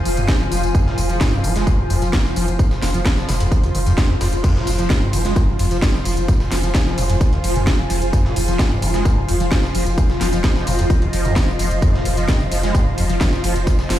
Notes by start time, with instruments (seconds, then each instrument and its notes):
Already playing: synth drone F3 F4, ambient pad F4 C5 G#5
0.05 sub bass F1, acid bass F3, open hi-hat, tambourine
0.17 sub bass F1, acid bass F2, closed hi-hat, tambourine
0.28 acid bass F3, kick, snare, closed hi-hat, tambourine
0.40 sub bass F1, acid bass F3, tambourine
0.51 sub bass F1, acid bass F3, open hi-hat, tambourine
0.63 sub bass F1, closed hi-hat, tambourine
0.75 acid bass F2, kick, closed hi-hat, tambourine
0.86 sub bass F1, acid bass A#2, snare
0.98 acid bass F1, sub bass F1, open hi-hat, tambourine
1.09 sub bass F1, acid bass F3, closed hi-hat, tambourine
1.21 acid bass G2, kick, snare, closed hi-hat, tambourine
1.33 sub bass F1, tambourine
1.44 sub bass F1, acid bass F3, open hi-hat, tambourine
1.56 sub bass F1, acid bass G#3, snare, closed hi-hat, tambourine
1.67 acid bass G2, kick, closed hi-hat, tambourine
1.79 sub bass F1, acid bass G#2
1.86 sub bass F1, acid bass F2, ambient pad C6, open hi-hat, tambourine
2.02 sub bass F1, acid bass F3, closed hi-hat, tambourine
2.13 acid bass G2, kick, snare, closed hi-hat, tambourine
2.25 sub bass F1, acid bass F3, snare, tambourine
2.36 sub bass F1, acid bass F3, open hi-hat, tambourine
2.48 sub bass F1, closed hi-hat, tambourine
2.59 acid bass G2, kick, closed hi-hat, tambourine
2.71 sub bass F1, snare, tambourine
2.82 sub bass F1, acid bass F3, snare, open hi-hat, tambourine
2.94 sub bass F1, acid bass F3, closed hi-hat, tambourine
3.05 acid bass F3, kick, snare, closed hi-hat, tambourine
3.17 sub bass F1, acid bass F3, snare, tambourine
3.28 sub bass F1, acid bass G#2, snare, open hi-hat, tambourine
3.40 sub bass F1, acid bass F2, closed hi-hat, tambourine
3.52 kick, closed hi-hat, tambourine
3.63 sub bass F1, acid bass D#2, closed hi-hat, tambourine
3.75 sub bass F1, acid bass D#3, open hi-hat, tambourine
3.86 sub bass F1, acid bass F2, closed hi-hat, tambourine
3.98 acid bass G#2, kick, snare, closed hi-hat, tambourine
4.09 sub bass F1, acid bass F2, tambourine
4.21 sub bass F1, acid bass F2, snare, open hi-hat, tambourine
4.33 sub bass F1, closed hi-hat, tambourine
4.44 acid bass F2, synth drone F3 F4, kick, closed hi-hat, crash, ride, tambourine
4.56 sub bass F1, acid bass A#2, snare
4.67 acid bass F1, sub bass F1, open hi-hat, ride, tambourine
4.79 sub bass F1, acid bass F3, closed hi-hat, tambourine
4.90 acid bass G2, kick, snare, closed hi-hat, ride, tambourine
5.02 sub bass F1, tambourine
5.13 sub bass F1, acid bass F3, open hi-hat, ride, tambourine
5.25 sub bass F1, acid bass G#3, snare, closed hi-hat, tambourine
5.36 acid bass G2, kick, closed hi-hat, ride, tambourine
5.48 sub bass F1, acid bass G#2
5.55 ambient pad G#5
5.59 sub bass F1, acid bass F2, open hi-hat, ride, tambourine
5.71 sub bass F1, acid bass F3, closed hi-hat, tambourine
5.82 acid bass G2, kick, snare, closed hi-hat, ride, tambourine
5.94 sub bass F1, acid bass F3, snare, tambourine
6.05 sub bass F1, acid bass F3, open hi-hat, ride, tambourine
6.17 sub bass F1, closed hi-hat, tambourine
6.28 acid bass G2, kick, closed hi-hat, ride, tambourine
6.40 sub bass F1, snare, tambourine
6.51 sub bass F1, acid bass F3, snare, open hi-hat, ride, tambourine
6.63 sub bass F1, acid bass F3, closed hi-hat, tambourine
6.74 acid bass F3, kick, snare, closed hi-hat, ride, tambourine
6.86 sub bass F1, acid bass F3, snare, tambourine
6.98 sub bass F1, acid bass G#2, open hi-hat, ride, tambourine
7.09 sub bass F1, acid bass F2, closed hi-hat, tambourine
7.21 kick, closed hi-hat, ride, tambourine
7.33 sub bass F1, acid bass D#2, closed hi-hat
7.44 sub bass F1, acid bass F3, open hi-hat, ride, tambourine
7.56 sub bass F1, acid bass F2, closed hi-hat, tambourine
7.67 acid bass F3, kick, snare, closed hi-hat, ride, tambourine
7.79 sub bass F1, acid bass F3, tambourine
7.90 sub bass F1, acid bass F3, open hi-hat, ride, tambourine
8.02 sub bass F1, closed hi-hat, tambourine
8.13 acid bass F2, kick, closed hi-hat, ride, tambourine
8.25 sub bass F1, acid bass A#2, snare
8.36 acid bass F1, sub bass F1, open hi-hat, ride, tambourine
8.48 sub bass F1, acid bass F3, closed hi-hat, tambourine
8.59 acid bass G2, kick, snare, closed hi-hat, ride, tambourine
8.71 sub bass F1, tambourine
8.82 sub bass F1, acid bass F3, open hi-hat, ride, tambourine
8.94 sub bass F1, acid bass G#3, snare, closed hi-hat, tambourine
9.05 acid bass G2, kick, closed hi-hat, ride, tambourine
9.17 sub bass F1, acid bass G#2
9.25 sub bass F1, acid bass F2, ambient pad D#5, open hi-hat, ride, tambourine
9.40 sub bass F1, acid bass F3, closed hi-hat, tambourine
9.51 acid bass G2, kick, snare, closed hi-hat, ride, tambourine
9.63 sub bass F1, acid bass F3, snare, tambourine
9.75 sub bass F1, acid bass F3, open hi-hat, ride, tambourine
9.86 sub bass F1, closed hi-hat, tambourine
9.98 acid bass G2, kick, closed hi-hat, ride, tambourine
10.10 sub bass F1, snare, tambourine
10.21 sub bass F1, acid bass F3, snare, open hi-hat, ride, tambourine
10.33 sub bass F1, acid bass F3, closed hi-hat, tambourine
10.44 acid bass F3, kick, snare, closed hi-hat, ride, tambourine
10.56 sub bass F1, acid bass F3, snare, tambourine
10.67 sub bass F1, acid bass G#2, open hi-hat, ride, tambourine
10.79 sub bass F1, acid bass F2, closed hi-hat, tambourine
10.90 kick, closed hi-hat, ride, tambourine
11.02 sub bass F1, acid bass D#2, closed hi-hat
11.13 sub bass F1, acid bass F3, open hi-hat, ride, tambourine
11.25 sub bass F1, acid bass F2, closed hi-hat, tambourine
11.36 acid bass F3, kick, snare, closed hi-hat, ride, tambourine
11.48 sub bass F1, acid bass F3, tambourine
11.59 sub bass F1, acid bass F3, open hi-hat, ride, tambourine
11.71 sub bass F1, closed hi-hat, tambourine
11.82 acid bass F2, kick, closed hi-hat, ride, tambourine
11.94 sub bass F1, acid bass A#2, snare
12.05 sub bass F1, acid bass F1, open hi-hat, ride, tambourine
12.17 sub bass F1, acid bass F3, closed hi-hat, tambourine
12.28 acid bass G2, kick, snare, closed hi-hat, ride, tambourine
12.40 sub bass F1, acid bass F3, tambourine
12.52 sub bass F1, acid bass F3, open hi-hat, ride, tambourine
12.63 sub bass F1, acid bass G#3, snare, closed hi-hat, tambourine
12.75 acid bass G2, kick, closed hi-hat, ride, tambourine
12.86 sub bass F1, acid bass G#2
12.94 sub bass F1, acid bass F2, ambient pad G#5
12.98 open hi-hat, ride, tambourine
13.09 sub bass F1, acid bass F3, closed hi-hat, tambourine
13.21 acid bass G2, kick, snare, closed hi-hat, ride, tambourine
13.33 sub bass F1, acid bass F3, snare, tambourine
13.44 sub bass F1, acid bass F3, open hi-hat, ride, tambourine
13.56 sub bass F1, closed hi-hat, tambourine
13.67 acid bass G2, kick, closed hi-hat, ride, tambourine
13.79 sub bass F1, snare, tambourine
13.90 sub bass F1, acid bass F3, snare, open hi-hat, ride, tambourine